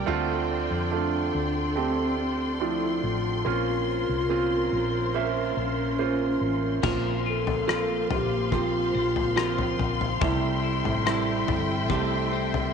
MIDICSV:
0, 0, Header, 1, 7, 480
1, 0, Start_track
1, 0, Tempo, 845070
1, 41, Time_signature, 4, 2, 24, 8
1, 7233, End_track
2, 0, Start_track
2, 0, Title_t, "String section"
2, 0, Program_c, 0, 48
2, 0, Note_on_c, 0, 74, 56
2, 0, Note_on_c, 0, 79, 58
2, 39, Note_on_c, 0, 69, 63
2, 41, Note_on_c, 0, 84, 62
2, 1939, Note_off_c, 0, 74, 0
2, 1940, Note_off_c, 0, 79, 0
2, 1941, Note_off_c, 0, 69, 0
2, 1958, Note_on_c, 0, 70, 64
2, 1959, Note_on_c, 0, 72, 52
2, 1960, Note_on_c, 0, 65, 58
2, 3858, Note_off_c, 0, 84, 0
2, 3861, Note_off_c, 0, 70, 0
2, 3861, Note_off_c, 0, 72, 0
2, 3862, Note_off_c, 0, 65, 0
2, 3884, Note_on_c, 0, 58, 61
2, 3884, Note_on_c, 0, 84, 70
2, 3885, Note_on_c, 0, 77, 61
2, 3887, Note_on_c, 0, 72, 58
2, 5783, Note_off_c, 0, 58, 0
2, 5784, Note_off_c, 0, 77, 0
2, 5785, Note_off_c, 0, 72, 0
2, 5802, Note_on_c, 0, 69, 66
2, 5802, Note_on_c, 0, 76, 67
2, 5803, Note_on_c, 0, 79, 65
2, 7233, Note_off_c, 0, 69, 0
2, 7233, Note_off_c, 0, 76, 0
2, 7233, Note_off_c, 0, 79, 0
2, 7233, Note_off_c, 0, 84, 0
2, 7233, End_track
3, 0, Start_track
3, 0, Title_t, "Alto flute"
3, 0, Program_c, 1, 73
3, 531, Note_on_c, 1, 62, 72
3, 1010, Note_on_c, 1, 60, 74
3, 1019, Note_off_c, 1, 62, 0
3, 1243, Note_off_c, 1, 60, 0
3, 1247, Note_on_c, 1, 60, 70
3, 1468, Note_off_c, 1, 60, 0
3, 1487, Note_on_c, 1, 64, 90
3, 1728, Note_on_c, 1, 65, 90
3, 1736, Note_off_c, 1, 64, 0
3, 3002, Note_off_c, 1, 65, 0
3, 3172, Note_on_c, 1, 61, 84
3, 3864, Note_off_c, 1, 61, 0
3, 3898, Note_on_c, 1, 65, 74
3, 4114, Note_off_c, 1, 65, 0
3, 4137, Note_on_c, 1, 69, 83
3, 4587, Note_off_c, 1, 69, 0
3, 4615, Note_on_c, 1, 67, 82
3, 4832, Note_off_c, 1, 67, 0
3, 4855, Note_on_c, 1, 65, 88
3, 5632, Note_off_c, 1, 65, 0
3, 5814, Note_on_c, 1, 64, 79
3, 6265, Note_off_c, 1, 64, 0
3, 6294, Note_on_c, 1, 64, 76
3, 6985, Note_off_c, 1, 64, 0
3, 7233, End_track
4, 0, Start_track
4, 0, Title_t, "Clean electric guitar"
4, 0, Program_c, 2, 27
4, 3881, Note_on_c, 2, 58, 72
4, 3885, Note_on_c, 2, 70, 60
4, 4124, Note_on_c, 2, 65, 53
4, 4357, Note_off_c, 2, 65, 0
4, 4361, Note_on_c, 2, 60, 46
4, 4363, Note_off_c, 2, 70, 0
4, 4363, Note_on_c, 2, 65, 49
4, 4839, Note_off_c, 2, 60, 0
4, 4841, Note_on_c, 2, 60, 50
4, 5079, Note_off_c, 2, 60, 0
4, 5081, Note_on_c, 2, 60, 48
4, 5314, Note_off_c, 2, 65, 0
4, 5316, Note_off_c, 2, 60, 0
4, 5318, Note_on_c, 2, 60, 51
4, 5321, Note_on_c, 2, 65, 47
4, 5325, Note_on_c, 2, 70, 47
4, 5800, Note_on_c, 2, 48, 70
4, 5801, Note_off_c, 2, 58, 0
4, 5802, Note_off_c, 2, 70, 0
4, 5805, Note_on_c, 2, 67, 56
4, 5849, Note_off_c, 2, 65, 0
4, 6039, Note_on_c, 2, 64, 54
4, 6279, Note_off_c, 2, 64, 0
4, 6280, Note_off_c, 2, 60, 0
4, 6282, Note_on_c, 2, 60, 58
4, 6284, Note_on_c, 2, 64, 53
4, 6288, Note_off_c, 2, 67, 0
4, 6290, Note_on_c, 2, 67, 47
4, 6759, Note_on_c, 2, 57, 58
4, 6995, Note_off_c, 2, 60, 0
4, 7002, Note_on_c, 2, 60, 51
4, 7232, Note_off_c, 2, 60, 0
4, 7233, Note_off_c, 2, 48, 0
4, 7233, Note_off_c, 2, 57, 0
4, 7233, Note_off_c, 2, 64, 0
4, 7233, Note_off_c, 2, 67, 0
4, 7233, End_track
5, 0, Start_track
5, 0, Title_t, "Grand piano"
5, 0, Program_c, 3, 0
5, 0, Control_c, 3, 64, 127
5, 35, Note_on_c, 3, 57, 83
5, 38, Note_on_c, 3, 50, 64
5, 39, Note_on_c, 3, 60, 90
5, 40, Note_on_c, 3, 62, 78
5, 43, Note_on_c, 3, 65, 100
5, 48, Control_c, 3, 64, 0
5, 154, Control_c, 3, 64, 127
5, 494, Note_off_c, 3, 57, 0
5, 496, Note_off_c, 3, 60, 0
5, 497, Note_off_c, 3, 62, 0
5, 498, Note_off_c, 3, 65, 0
5, 519, Note_on_c, 3, 57, 65
5, 521, Note_on_c, 3, 60, 56
5, 524, Note_on_c, 3, 62, 56
5, 526, Note_on_c, 3, 65, 72
5, 737, Note_off_c, 3, 50, 0
5, 976, Note_off_c, 3, 57, 0
5, 977, Note_off_c, 3, 60, 0
5, 979, Note_off_c, 3, 62, 0
5, 980, Note_off_c, 3, 65, 0
5, 997, Note_on_c, 3, 57, 64
5, 999, Note_on_c, 3, 60, 59
5, 1000, Note_on_c, 3, 62, 51
5, 1005, Note_on_c, 3, 67, 67
5, 1456, Note_off_c, 3, 57, 0
5, 1456, Note_off_c, 3, 60, 0
5, 1457, Note_off_c, 3, 62, 0
5, 1459, Note_off_c, 3, 67, 0
5, 1478, Note_on_c, 3, 57, 65
5, 1480, Note_on_c, 3, 60, 57
5, 1481, Note_on_c, 3, 62, 53
5, 1485, Note_on_c, 3, 53, 71
5, 1936, Note_off_c, 3, 57, 0
5, 1937, Note_off_c, 3, 60, 0
5, 1937, Note_off_c, 3, 62, 0
5, 1939, Note_off_c, 3, 53, 0
5, 1959, Note_on_c, 3, 58, 72
5, 1959, Note_on_c, 3, 60, 63
5, 1963, Note_on_c, 3, 46, 47
5, 1963, Note_on_c, 3, 61, 66
5, 1966, Note_on_c, 3, 65, 80
5, 1969, Control_c, 3, 64, 0
5, 2056, Control_c, 3, 64, 127
5, 2416, Note_off_c, 3, 58, 0
5, 2416, Note_off_c, 3, 60, 0
5, 2418, Note_off_c, 3, 61, 0
5, 2420, Note_off_c, 3, 65, 0
5, 2440, Note_on_c, 3, 58, 69
5, 2443, Note_on_c, 3, 60, 63
5, 2445, Note_on_c, 3, 61, 65
5, 2446, Note_on_c, 3, 65, 82
5, 2659, Note_off_c, 3, 46, 0
5, 2897, Note_off_c, 3, 58, 0
5, 2898, Note_off_c, 3, 60, 0
5, 2899, Note_off_c, 3, 61, 0
5, 2900, Note_off_c, 3, 65, 0
5, 2923, Note_on_c, 3, 58, 73
5, 2925, Note_on_c, 3, 61, 65
5, 2925, Note_on_c, 3, 72, 66
5, 2929, Note_on_c, 3, 76, 73
5, 3378, Note_off_c, 3, 58, 0
5, 3379, Note_off_c, 3, 61, 0
5, 3379, Note_off_c, 3, 72, 0
5, 3381, Note_off_c, 3, 76, 0
5, 3403, Note_on_c, 3, 58, 66
5, 3404, Note_on_c, 3, 72, 70
5, 3408, Note_on_c, 3, 61, 61
5, 3410, Note_on_c, 3, 65, 76
5, 3858, Note_off_c, 3, 58, 0
5, 3859, Note_off_c, 3, 72, 0
5, 3861, Note_off_c, 3, 61, 0
5, 3862, Note_off_c, 3, 65, 0
5, 3880, Note_on_c, 3, 53, 59
5, 3883, Note_on_c, 3, 46, 54
5, 3883, Note_on_c, 3, 58, 50
5, 3884, Note_on_c, 3, 60, 50
5, 3887, Note_on_c, 3, 65, 66
5, 3889, Control_c, 3, 64, 0
5, 3974, Control_c, 3, 64, 127
5, 4337, Note_off_c, 3, 53, 0
5, 4338, Note_off_c, 3, 58, 0
5, 4339, Note_off_c, 3, 60, 0
5, 4340, Note_off_c, 3, 65, 0
5, 4359, Note_on_c, 3, 53, 65
5, 4362, Note_on_c, 3, 58, 58
5, 4364, Note_on_c, 3, 60, 55
5, 4366, Note_on_c, 3, 65, 66
5, 4579, Note_off_c, 3, 46, 0
5, 4816, Note_off_c, 3, 53, 0
5, 4818, Note_off_c, 3, 58, 0
5, 4819, Note_off_c, 3, 60, 0
5, 4820, Note_off_c, 3, 65, 0
5, 4838, Note_on_c, 3, 53, 64
5, 4841, Note_on_c, 3, 58, 54
5, 4843, Note_on_c, 3, 60, 57
5, 4845, Note_on_c, 3, 67, 63
5, 5296, Note_off_c, 3, 53, 0
5, 5297, Note_off_c, 3, 58, 0
5, 5298, Note_off_c, 3, 60, 0
5, 5299, Note_off_c, 3, 67, 0
5, 5316, Note_on_c, 3, 53, 58
5, 5317, Note_on_c, 3, 58, 56
5, 5321, Note_on_c, 3, 60, 52
5, 5322, Note_on_c, 3, 65, 70
5, 5775, Note_off_c, 3, 53, 0
5, 5775, Note_off_c, 3, 58, 0
5, 5777, Note_off_c, 3, 60, 0
5, 5778, Note_off_c, 3, 65, 0
5, 5799, Note_on_c, 3, 55, 66
5, 5800, Note_on_c, 3, 57, 56
5, 5802, Note_on_c, 3, 48, 51
5, 5803, Note_on_c, 3, 60, 57
5, 5805, Note_on_c, 3, 64, 72
5, 5809, Control_c, 3, 64, 0
5, 5901, Control_c, 3, 64, 127
5, 6256, Note_off_c, 3, 55, 0
5, 6257, Note_off_c, 3, 57, 0
5, 6258, Note_off_c, 3, 60, 0
5, 6259, Note_off_c, 3, 64, 0
5, 6280, Note_on_c, 3, 55, 64
5, 6282, Note_on_c, 3, 57, 58
5, 6283, Note_on_c, 3, 60, 64
5, 6286, Note_on_c, 3, 64, 69
5, 6499, Note_off_c, 3, 48, 0
5, 6737, Note_off_c, 3, 55, 0
5, 6738, Note_off_c, 3, 57, 0
5, 6738, Note_off_c, 3, 60, 0
5, 6740, Note_off_c, 3, 64, 0
5, 6757, Note_on_c, 3, 55, 58
5, 6759, Note_on_c, 3, 57, 58
5, 6761, Note_on_c, 3, 60, 60
5, 6764, Note_on_c, 3, 67, 74
5, 7215, Note_off_c, 3, 55, 0
5, 7216, Note_off_c, 3, 57, 0
5, 7217, Note_off_c, 3, 60, 0
5, 7219, Note_off_c, 3, 67, 0
5, 7233, End_track
6, 0, Start_track
6, 0, Title_t, "Fretless electric bass"
6, 0, Program_c, 4, 35
6, 44, Note_on_c, 4, 38, 87
6, 380, Note_off_c, 4, 38, 0
6, 402, Note_on_c, 4, 41, 70
6, 739, Note_off_c, 4, 41, 0
6, 765, Note_on_c, 4, 38, 73
6, 1700, Note_off_c, 4, 38, 0
6, 1724, Note_on_c, 4, 33, 73
6, 1946, Note_off_c, 4, 33, 0
6, 1963, Note_on_c, 4, 34, 83
6, 2300, Note_off_c, 4, 34, 0
6, 2324, Note_on_c, 4, 36, 72
6, 2660, Note_off_c, 4, 36, 0
6, 2685, Note_on_c, 4, 34, 72
6, 3140, Note_off_c, 4, 34, 0
6, 3163, Note_on_c, 4, 34, 71
6, 3619, Note_off_c, 4, 34, 0
6, 3642, Note_on_c, 4, 33, 66
6, 3865, Note_off_c, 4, 33, 0
6, 3883, Note_on_c, 4, 34, 75
6, 4579, Note_off_c, 4, 34, 0
6, 4601, Note_on_c, 4, 34, 84
6, 5059, Note_off_c, 4, 34, 0
6, 5084, Note_on_c, 4, 34, 71
6, 5540, Note_off_c, 4, 34, 0
6, 5562, Note_on_c, 4, 34, 68
6, 5785, Note_off_c, 4, 34, 0
6, 5802, Note_on_c, 4, 36, 80
6, 6139, Note_off_c, 4, 36, 0
6, 6162, Note_on_c, 4, 33, 79
6, 6499, Note_off_c, 4, 33, 0
6, 6520, Note_on_c, 4, 31, 82
6, 6759, Note_off_c, 4, 31, 0
6, 6759, Note_on_c, 4, 36, 95
6, 7217, Note_off_c, 4, 36, 0
6, 7233, End_track
7, 0, Start_track
7, 0, Title_t, "Drums"
7, 3881, Note_on_c, 9, 43, 86
7, 3881, Note_on_c, 9, 49, 76
7, 3883, Note_on_c, 9, 36, 85
7, 3938, Note_off_c, 9, 43, 0
7, 3938, Note_off_c, 9, 49, 0
7, 3940, Note_off_c, 9, 36, 0
7, 4244, Note_on_c, 9, 43, 55
7, 4301, Note_off_c, 9, 43, 0
7, 4369, Note_on_c, 9, 37, 96
7, 4426, Note_off_c, 9, 37, 0
7, 4604, Note_on_c, 9, 43, 71
7, 4661, Note_off_c, 9, 43, 0
7, 4840, Note_on_c, 9, 36, 66
7, 4897, Note_off_c, 9, 36, 0
7, 5203, Note_on_c, 9, 43, 57
7, 5260, Note_off_c, 9, 43, 0
7, 5325, Note_on_c, 9, 37, 89
7, 5381, Note_off_c, 9, 37, 0
7, 5444, Note_on_c, 9, 43, 58
7, 5501, Note_off_c, 9, 43, 0
7, 5563, Note_on_c, 9, 43, 54
7, 5620, Note_off_c, 9, 43, 0
7, 5685, Note_on_c, 9, 43, 51
7, 5742, Note_off_c, 9, 43, 0
7, 5802, Note_on_c, 9, 36, 89
7, 5802, Note_on_c, 9, 43, 104
7, 5859, Note_off_c, 9, 36, 0
7, 5859, Note_off_c, 9, 43, 0
7, 6164, Note_on_c, 9, 43, 55
7, 6221, Note_off_c, 9, 43, 0
7, 6286, Note_on_c, 9, 37, 96
7, 6343, Note_off_c, 9, 37, 0
7, 6522, Note_on_c, 9, 43, 69
7, 6578, Note_off_c, 9, 43, 0
7, 6758, Note_on_c, 9, 36, 64
7, 6815, Note_off_c, 9, 36, 0
7, 7124, Note_on_c, 9, 43, 56
7, 7180, Note_off_c, 9, 43, 0
7, 7233, End_track
0, 0, End_of_file